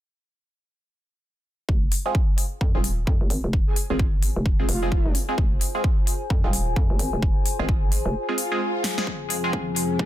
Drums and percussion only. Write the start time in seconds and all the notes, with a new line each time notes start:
1.69 kick
1.92 open hi-hat
2.15 kick
2.38 open hi-hat
2.61 kick
2.84 open hi-hat
3.07 kick
3.30 open hi-hat
3.53 kick
3.76 open hi-hat
3.99 kick
4.22 open hi-hat
4.46 kick
4.69 open hi-hat
4.92 kick
5.15 open hi-hat
5.38 kick
5.61 open hi-hat
5.84 kick
6.07 open hi-hat
6.30 kick
6.53 open hi-hat
6.76 kick
6.99 open hi-hat
7.22 kick
7.46 open hi-hat
7.69 kick
7.92 open hi-hat
8.38 open hi-hat
8.84 snare, open hi-hat
8.98 snare
9.07 kick
9.30 open hi-hat
9.53 kick
9.76 open hi-hat
9.99 kick